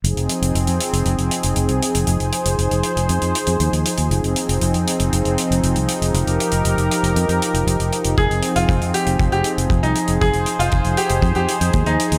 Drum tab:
HH |xxxxxxxxxxxxxxxx|xxxxxxxxxxxxxxxx|xxxxxxxxxxxxxxxx|xxxxxxxxxxxxxxxx|
BD |----------------|----------------|----------------|----------------|

HH |xxxxxxxxxxxxxxxx|xxxxxxxxxxxxxxxx|
BD |o---o---o---o---|o---o---o---o---|